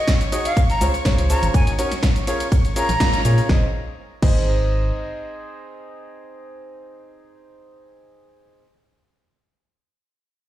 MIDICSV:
0, 0, Header, 1, 6, 480
1, 0, Start_track
1, 0, Key_signature, -4, "major"
1, 0, Tempo, 487805
1, 1518, Time_signature, 4, 2, 24, 8
1, 10319, End_track
2, 0, Start_track
2, 0, Title_t, "Flute"
2, 0, Program_c, 0, 73
2, 0, Note_on_c, 0, 75, 97
2, 119, Note_off_c, 0, 75, 0
2, 445, Note_on_c, 0, 77, 99
2, 600, Note_off_c, 0, 77, 0
2, 686, Note_on_c, 0, 82, 95
2, 840, Note_off_c, 0, 82, 0
2, 1278, Note_on_c, 0, 82, 98
2, 1442, Note_off_c, 0, 82, 0
2, 1518, Note_on_c, 0, 80, 95
2, 1682, Note_off_c, 0, 80, 0
2, 2718, Note_on_c, 0, 82, 101
2, 3392, Note_off_c, 0, 82, 0
2, 10319, End_track
3, 0, Start_track
3, 0, Title_t, "Violin section"
3, 0, Program_c, 1, 48
3, 0, Note_on_c, 1, 73, 86
3, 0, Note_on_c, 1, 85, 87
3, 3449, Note_off_c, 1, 73, 0
3, 3449, Note_off_c, 1, 85, 0
3, 10319, End_track
4, 0, Start_track
4, 0, Title_t, "Upright piano"
4, 0, Program_c, 2, 0
4, 318, Note_on_c, 2, 63, 90
4, 318, Note_on_c, 2, 66, 81
4, 318, Note_on_c, 2, 68, 83
4, 318, Note_on_c, 2, 73, 82
4, 318, Note_on_c, 2, 75, 98
4, 493, Note_off_c, 2, 63, 0
4, 493, Note_off_c, 2, 66, 0
4, 493, Note_off_c, 2, 68, 0
4, 493, Note_off_c, 2, 73, 0
4, 493, Note_off_c, 2, 75, 0
4, 798, Note_on_c, 2, 61, 86
4, 798, Note_on_c, 2, 65, 78
4, 798, Note_on_c, 2, 68, 77
4, 798, Note_on_c, 2, 72, 78
4, 798, Note_on_c, 2, 73, 94
4, 911, Note_off_c, 2, 61, 0
4, 911, Note_off_c, 2, 65, 0
4, 911, Note_off_c, 2, 68, 0
4, 911, Note_off_c, 2, 72, 0
4, 911, Note_off_c, 2, 73, 0
4, 1038, Note_on_c, 2, 73, 110
4, 1039, Note_on_c, 2, 61, 101
4, 1039, Note_on_c, 2, 65, 95
4, 1039, Note_on_c, 2, 68, 91
4, 1039, Note_on_c, 2, 72, 91
4, 1213, Note_off_c, 2, 61, 0
4, 1213, Note_off_c, 2, 65, 0
4, 1213, Note_off_c, 2, 68, 0
4, 1213, Note_off_c, 2, 72, 0
4, 1213, Note_off_c, 2, 73, 0
4, 1278, Note_on_c, 2, 61, 83
4, 1278, Note_on_c, 2, 65, 77
4, 1278, Note_on_c, 2, 68, 79
4, 1278, Note_on_c, 2, 72, 80
4, 1278, Note_on_c, 2, 73, 90
4, 1491, Note_off_c, 2, 61, 0
4, 1491, Note_off_c, 2, 65, 0
4, 1491, Note_off_c, 2, 68, 0
4, 1491, Note_off_c, 2, 72, 0
4, 1491, Note_off_c, 2, 73, 0
4, 1518, Note_on_c, 2, 61, 76
4, 1518, Note_on_c, 2, 63, 70
4, 1518, Note_on_c, 2, 70, 70
4, 1519, Note_on_c, 2, 66, 70
4, 1519, Note_on_c, 2, 73, 86
4, 1693, Note_off_c, 2, 61, 0
4, 1693, Note_off_c, 2, 63, 0
4, 1693, Note_off_c, 2, 66, 0
4, 1693, Note_off_c, 2, 70, 0
4, 1693, Note_off_c, 2, 73, 0
4, 1757, Note_on_c, 2, 61, 96
4, 1757, Note_on_c, 2, 63, 84
4, 1757, Note_on_c, 2, 73, 104
4, 1758, Note_on_c, 2, 66, 85
4, 1758, Note_on_c, 2, 70, 86
4, 1870, Note_off_c, 2, 61, 0
4, 1870, Note_off_c, 2, 63, 0
4, 1870, Note_off_c, 2, 66, 0
4, 1870, Note_off_c, 2, 73, 0
4, 1871, Note_off_c, 2, 70, 0
4, 2237, Note_on_c, 2, 61, 92
4, 2238, Note_on_c, 2, 65, 83
4, 2238, Note_on_c, 2, 68, 84
4, 2238, Note_on_c, 2, 70, 83
4, 2238, Note_on_c, 2, 73, 103
4, 2412, Note_off_c, 2, 61, 0
4, 2412, Note_off_c, 2, 65, 0
4, 2412, Note_off_c, 2, 68, 0
4, 2412, Note_off_c, 2, 70, 0
4, 2412, Note_off_c, 2, 73, 0
4, 2717, Note_on_c, 2, 61, 85
4, 2717, Note_on_c, 2, 65, 78
4, 2717, Note_on_c, 2, 68, 77
4, 2717, Note_on_c, 2, 70, 77
4, 2717, Note_on_c, 2, 73, 95
4, 2830, Note_off_c, 2, 61, 0
4, 2830, Note_off_c, 2, 65, 0
4, 2830, Note_off_c, 2, 68, 0
4, 2830, Note_off_c, 2, 70, 0
4, 2830, Note_off_c, 2, 73, 0
4, 2957, Note_on_c, 2, 61, 103
4, 2957, Note_on_c, 2, 65, 92
4, 2957, Note_on_c, 2, 68, 91
4, 2957, Note_on_c, 2, 70, 94
4, 2957, Note_on_c, 2, 73, 112
4, 3132, Note_off_c, 2, 61, 0
4, 3132, Note_off_c, 2, 65, 0
4, 3132, Note_off_c, 2, 68, 0
4, 3132, Note_off_c, 2, 70, 0
4, 3132, Note_off_c, 2, 73, 0
4, 3197, Note_on_c, 2, 61, 85
4, 3197, Note_on_c, 2, 65, 76
4, 3197, Note_on_c, 2, 68, 77
4, 3197, Note_on_c, 2, 70, 76
4, 3197, Note_on_c, 2, 73, 91
4, 3410, Note_off_c, 2, 61, 0
4, 3410, Note_off_c, 2, 65, 0
4, 3410, Note_off_c, 2, 68, 0
4, 3410, Note_off_c, 2, 70, 0
4, 3410, Note_off_c, 2, 73, 0
4, 3436, Note_on_c, 2, 63, 80
4, 3436, Note_on_c, 2, 68, 78
4, 3437, Note_on_c, 2, 60, 88
4, 3437, Note_on_c, 2, 72, 81
4, 3437, Note_on_c, 2, 75, 97
4, 3576, Note_off_c, 2, 60, 0
4, 3576, Note_off_c, 2, 63, 0
4, 3576, Note_off_c, 2, 68, 0
4, 3576, Note_off_c, 2, 72, 0
4, 3576, Note_off_c, 2, 75, 0
4, 4157, Note_on_c, 2, 60, 85
4, 4157, Note_on_c, 2, 63, 77
4, 4157, Note_on_c, 2, 68, 80
4, 4157, Note_on_c, 2, 72, 82
4, 4157, Note_on_c, 2, 75, 95
4, 8472, Note_off_c, 2, 60, 0
4, 8472, Note_off_c, 2, 63, 0
4, 8472, Note_off_c, 2, 68, 0
4, 8472, Note_off_c, 2, 72, 0
4, 8472, Note_off_c, 2, 75, 0
4, 10319, End_track
5, 0, Start_track
5, 0, Title_t, "FM bass"
5, 0, Program_c, 3, 39
5, 798, Note_on_c, 3, 37, 99
5, 878, Note_off_c, 3, 37, 0
5, 1038, Note_on_c, 3, 37, 89
5, 1329, Note_off_c, 3, 37, 0
5, 1405, Note_on_c, 3, 32, 99
5, 1476, Note_off_c, 3, 32, 0
5, 1518, Note_on_c, 3, 39, 100
5, 1597, Note_off_c, 3, 39, 0
5, 2845, Note_on_c, 3, 34, 88
5, 2916, Note_off_c, 3, 34, 0
5, 3198, Note_on_c, 3, 46, 103
5, 3354, Note_off_c, 3, 46, 0
5, 3437, Note_on_c, 3, 32, 97
5, 3577, Note_off_c, 3, 32, 0
5, 4157, Note_on_c, 3, 32, 97
5, 4838, Note_off_c, 3, 32, 0
5, 10319, End_track
6, 0, Start_track
6, 0, Title_t, "Drums"
6, 74, Note_on_c, 9, 38, 123
6, 78, Note_on_c, 9, 36, 105
6, 78, Note_on_c, 9, 51, 74
6, 80, Note_on_c, 9, 82, 50
6, 81, Note_off_c, 9, 38, 0
6, 81, Note_on_c, 9, 38, 127
6, 83, Note_on_c, 9, 42, 84
6, 176, Note_off_c, 9, 36, 0
6, 176, Note_off_c, 9, 51, 0
6, 178, Note_off_c, 9, 82, 0
6, 179, Note_off_c, 9, 38, 0
6, 182, Note_off_c, 9, 42, 0
6, 206, Note_on_c, 9, 42, 39
6, 208, Note_on_c, 9, 82, 24
6, 304, Note_off_c, 9, 42, 0
6, 306, Note_off_c, 9, 82, 0
6, 318, Note_on_c, 9, 46, 103
6, 320, Note_on_c, 9, 42, 64
6, 320, Note_on_c, 9, 82, 83
6, 417, Note_off_c, 9, 46, 0
6, 419, Note_off_c, 9, 42, 0
6, 419, Note_off_c, 9, 82, 0
6, 446, Note_on_c, 9, 42, 71
6, 448, Note_on_c, 9, 82, 36
6, 544, Note_off_c, 9, 42, 0
6, 546, Note_off_c, 9, 82, 0
6, 555, Note_on_c, 9, 42, 83
6, 558, Note_on_c, 9, 36, 119
6, 558, Note_on_c, 9, 51, 72
6, 560, Note_on_c, 9, 82, 50
6, 653, Note_off_c, 9, 42, 0
6, 656, Note_off_c, 9, 36, 0
6, 657, Note_off_c, 9, 51, 0
6, 659, Note_off_c, 9, 82, 0
6, 684, Note_on_c, 9, 38, 42
6, 686, Note_on_c, 9, 42, 39
6, 688, Note_on_c, 9, 82, 23
6, 782, Note_off_c, 9, 38, 0
6, 784, Note_off_c, 9, 42, 0
6, 786, Note_off_c, 9, 82, 0
6, 798, Note_on_c, 9, 46, 104
6, 799, Note_on_c, 9, 38, 52
6, 800, Note_on_c, 9, 42, 72
6, 800, Note_on_c, 9, 82, 85
6, 896, Note_off_c, 9, 46, 0
6, 897, Note_off_c, 9, 38, 0
6, 898, Note_off_c, 9, 82, 0
6, 899, Note_off_c, 9, 42, 0
6, 924, Note_on_c, 9, 38, 57
6, 926, Note_on_c, 9, 46, 60
6, 928, Note_on_c, 9, 82, 37
6, 1022, Note_off_c, 9, 38, 0
6, 1024, Note_off_c, 9, 46, 0
6, 1026, Note_off_c, 9, 82, 0
6, 1032, Note_on_c, 9, 38, 108
6, 1034, Note_off_c, 9, 38, 0
6, 1034, Note_on_c, 9, 38, 118
6, 1038, Note_on_c, 9, 36, 103
6, 1038, Note_on_c, 9, 42, 92
6, 1038, Note_on_c, 9, 51, 71
6, 1040, Note_on_c, 9, 82, 49
6, 1133, Note_off_c, 9, 38, 0
6, 1136, Note_off_c, 9, 36, 0
6, 1136, Note_off_c, 9, 42, 0
6, 1136, Note_off_c, 9, 51, 0
6, 1138, Note_off_c, 9, 82, 0
6, 1165, Note_on_c, 9, 42, 55
6, 1167, Note_on_c, 9, 82, 24
6, 1264, Note_off_c, 9, 42, 0
6, 1266, Note_off_c, 9, 82, 0
6, 1271, Note_on_c, 9, 42, 68
6, 1278, Note_on_c, 9, 46, 104
6, 1280, Note_on_c, 9, 38, 46
6, 1280, Note_on_c, 9, 82, 85
6, 1369, Note_off_c, 9, 42, 0
6, 1376, Note_off_c, 9, 46, 0
6, 1378, Note_off_c, 9, 82, 0
6, 1379, Note_off_c, 9, 38, 0
6, 1405, Note_on_c, 9, 42, 69
6, 1407, Note_on_c, 9, 82, 36
6, 1503, Note_off_c, 9, 42, 0
6, 1505, Note_off_c, 9, 82, 0
6, 1512, Note_on_c, 9, 42, 87
6, 1518, Note_on_c, 9, 36, 114
6, 1518, Note_on_c, 9, 51, 69
6, 1520, Note_on_c, 9, 82, 49
6, 1611, Note_off_c, 9, 42, 0
6, 1616, Note_off_c, 9, 36, 0
6, 1617, Note_off_c, 9, 51, 0
6, 1618, Note_off_c, 9, 82, 0
6, 1645, Note_on_c, 9, 42, 57
6, 1647, Note_on_c, 9, 82, 24
6, 1743, Note_off_c, 9, 42, 0
6, 1745, Note_off_c, 9, 82, 0
6, 1758, Note_on_c, 9, 46, 107
6, 1760, Note_on_c, 9, 42, 68
6, 1760, Note_on_c, 9, 82, 82
6, 1856, Note_off_c, 9, 46, 0
6, 1858, Note_off_c, 9, 82, 0
6, 1859, Note_off_c, 9, 42, 0
6, 1881, Note_on_c, 9, 38, 37
6, 1885, Note_on_c, 9, 42, 70
6, 1887, Note_on_c, 9, 82, 35
6, 1980, Note_off_c, 9, 38, 0
6, 1983, Note_off_c, 9, 42, 0
6, 1985, Note_off_c, 9, 82, 0
6, 1994, Note_on_c, 9, 38, 125
6, 1996, Note_off_c, 9, 38, 0
6, 1996, Note_on_c, 9, 38, 114
6, 1998, Note_on_c, 9, 36, 105
6, 1998, Note_on_c, 9, 51, 69
6, 2000, Note_on_c, 9, 82, 48
6, 2003, Note_on_c, 9, 42, 93
6, 2094, Note_off_c, 9, 38, 0
6, 2096, Note_off_c, 9, 36, 0
6, 2096, Note_off_c, 9, 51, 0
6, 2098, Note_off_c, 9, 82, 0
6, 2101, Note_off_c, 9, 42, 0
6, 2125, Note_on_c, 9, 42, 39
6, 2127, Note_on_c, 9, 82, 24
6, 2223, Note_off_c, 9, 42, 0
6, 2225, Note_off_c, 9, 82, 0
6, 2237, Note_on_c, 9, 46, 107
6, 2238, Note_on_c, 9, 42, 73
6, 2239, Note_on_c, 9, 82, 83
6, 2335, Note_off_c, 9, 46, 0
6, 2337, Note_off_c, 9, 42, 0
6, 2337, Note_off_c, 9, 82, 0
6, 2365, Note_on_c, 9, 38, 52
6, 2365, Note_on_c, 9, 42, 71
6, 2367, Note_on_c, 9, 82, 36
6, 2463, Note_off_c, 9, 38, 0
6, 2463, Note_off_c, 9, 42, 0
6, 2465, Note_off_c, 9, 82, 0
6, 2475, Note_on_c, 9, 42, 87
6, 2478, Note_on_c, 9, 36, 115
6, 2478, Note_on_c, 9, 51, 69
6, 2480, Note_on_c, 9, 82, 49
6, 2574, Note_off_c, 9, 42, 0
6, 2576, Note_off_c, 9, 36, 0
6, 2577, Note_off_c, 9, 51, 0
6, 2579, Note_off_c, 9, 82, 0
6, 2605, Note_on_c, 9, 42, 39
6, 2607, Note_on_c, 9, 82, 23
6, 2611, Note_off_c, 9, 42, 0
6, 2611, Note_on_c, 9, 42, 40
6, 2705, Note_off_c, 9, 82, 0
6, 2709, Note_off_c, 9, 42, 0
6, 2717, Note_on_c, 9, 42, 68
6, 2717, Note_on_c, 9, 46, 107
6, 2719, Note_on_c, 9, 82, 82
6, 2815, Note_off_c, 9, 42, 0
6, 2816, Note_off_c, 9, 46, 0
6, 2818, Note_off_c, 9, 82, 0
6, 2841, Note_on_c, 9, 38, 57
6, 2844, Note_on_c, 9, 42, 72
6, 2846, Note_on_c, 9, 82, 36
6, 2940, Note_off_c, 9, 38, 0
6, 2943, Note_off_c, 9, 42, 0
6, 2945, Note_off_c, 9, 82, 0
6, 2954, Note_on_c, 9, 38, 123
6, 2956, Note_on_c, 9, 42, 95
6, 2958, Note_off_c, 9, 38, 0
6, 2958, Note_on_c, 9, 36, 104
6, 2958, Note_on_c, 9, 38, 127
6, 2958, Note_on_c, 9, 51, 67
6, 2960, Note_on_c, 9, 82, 46
6, 3055, Note_off_c, 9, 42, 0
6, 3056, Note_off_c, 9, 36, 0
6, 3056, Note_off_c, 9, 51, 0
6, 3057, Note_off_c, 9, 38, 0
6, 3058, Note_off_c, 9, 82, 0
6, 3084, Note_on_c, 9, 42, 57
6, 3086, Note_on_c, 9, 82, 24
6, 3183, Note_off_c, 9, 42, 0
6, 3185, Note_off_c, 9, 82, 0
6, 3196, Note_on_c, 9, 42, 77
6, 3197, Note_on_c, 9, 46, 104
6, 3199, Note_on_c, 9, 82, 84
6, 3295, Note_off_c, 9, 42, 0
6, 3296, Note_off_c, 9, 46, 0
6, 3298, Note_off_c, 9, 82, 0
6, 3322, Note_on_c, 9, 38, 55
6, 3324, Note_on_c, 9, 46, 61
6, 3326, Note_on_c, 9, 82, 35
6, 3421, Note_off_c, 9, 38, 0
6, 3423, Note_off_c, 9, 46, 0
6, 3425, Note_off_c, 9, 82, 0
6, 3437, Note_on_c, 9, 36, 113
6, 3437, Note_on_c, 9, 38, 88
6, 3536, Note_off_c, 9, 36, 0
6, 3536, Note_off_c, 9, 38, 0
6, 4157, Note_on_c, 9, 36, 114
6, 4157, Note_on_c, 9, 49, 89
6, 4256, Note_off_c, 9, 36, 0
6, 4256, Note_off_c, 9, 49, 0
6, 10319, End_track
0, 0, End_of_file